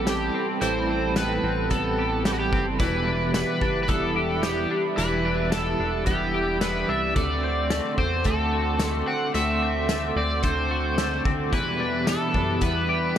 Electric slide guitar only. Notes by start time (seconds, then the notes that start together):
0.08 G4
0.62 C5
1.17 B4
1.71 A4
2.26 G4
2.33 F#4
2.40 G4
2.80 B4
3.35 B4
3.83 B4
3.88 A4
4.43 G4
4.97 B4
5.52 A4
6.07 G4
6.62 B4
6.89 E5
7.16 D5
7.98 C5
8.26 A4
9.08 F#5
9.35 E5
10.17 D5
10.44 C5
11.54 B4
12.09 A4
12.64 B4